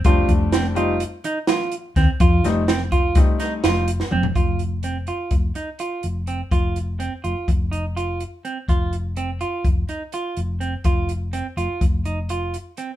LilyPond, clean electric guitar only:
\new Staff \with { instrumentName = "Clean electric guitar" } { \time 9/8 \key f \mixolydian \tempo 4. = 83 f'4 c'8 f'4 ees'8 f'4 c'8 | f'4 c'8 f'4 ees'8 f'4 c'8 | f'4 c'8 f'4 ees'8 f'4 c'8 | f'4 c'8 f'4 ees'8 f'4 c'8 |
f'4 c'8 f'4 ees'8 f'4 c'8 | f'4 c'8 f'4 ees'8 f'4 c'8 | }